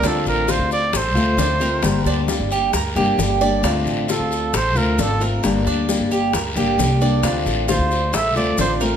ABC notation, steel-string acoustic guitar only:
X:1
M:4/4
L:1/8
Q:1/4=133
K:Dm
V:1 name="Steel-string acoustic guitar"
[D,A,CF]2 [D,A,CF]2 z [A,CF] [D,A,C] [A,CF] | [D,G,B,DG]2 [G,B,DG]2 z [G,B,DG] [G,B,DG] [G,B,DG] | [D,A,CF]2 [D,A,CF]2 z [A,CF] [D,A,CF] [A,CF] | [D,G,B,DG]2 [G,B,DG]2 z [G,B,DG] [G,B,DG] [G,B,DG] |
[D,A,CF]2 [D,A,CF]2 z [A,CF] [D,CF] [A,CF] |]